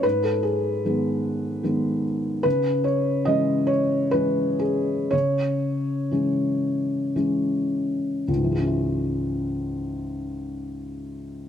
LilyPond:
<<
  \new Staff \with { instrumentName = "Felt piano" } { \time 3/4 \key cis \minor \tempo 4 = 60 b'16 a'16 gis'2 r8 | b'8 cis''8 dis''8 cis''8 b'8 gis'8 | cis''2 r4 | <cis, gis, e gis cis' e'>2. | }
  \new Staff \with { instrumentName = "Felt piano" } { \clef bass \time 3/4 \key cis \minor gis,4 <dis gis b>4 <dis gis b>4 | cis4 <e gis cis'>4 <e gis cis'>4 | cis4 <e gis cis'>4 <e gis cis'>4 | r2. | }
>>